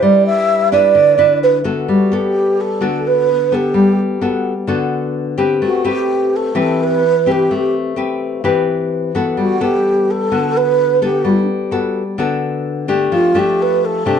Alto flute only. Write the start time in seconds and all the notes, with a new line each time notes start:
0.03 D5
0.26 E5
0.72 D5
1.43 B4
1.91 F#4
2.14 G4
2.60 A4
3.07 B4
3.54 G4
5.65 F#4
5.89 G4
6.36 A4
6.59 A4
6.83 B4
7.31 G4
9.41 F#4
9.63 G4
10.10 A4
10.57 B4
11.03 G4
13.13 F4
13.39 G4
13.62 B4
13.85 A4